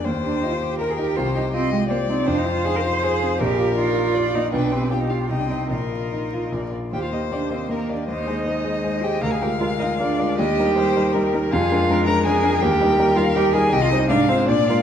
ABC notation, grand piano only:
X:1
M:3/4
L:1/8
Q:1/4=159
K:Eb
V:1 name="Grand piano"
E,, G F G B E | C,, G F G c E | F,, F E F c C | B,,, F E F d B, |
=B,,, G F G C,, [Ee] | B,,, F E F B,,, [Fd] | E,, [B,Ge] [B,Ge] [B,Ge] [B,Ge] [B,Ge] | E,, [A,Ac] [A,Ac] [A,Ac] [A,Ac] [A,Ac] |
D,, [A,FB] [A,FB] [A,FB] [A,FB] [A,FB] | E,, [G,EB] [G,EB] [G,EB] [G,EB] [G,EB] | F,, [A,DB] [A,DB] [A,DB] [A,DB] [A,DB] | E,, [G,EB] [G,EB] [G,EB] [G,EB] [G,EB] |
C,, [G,Ec] A,, [A,Fc] B,, [A,FB] |]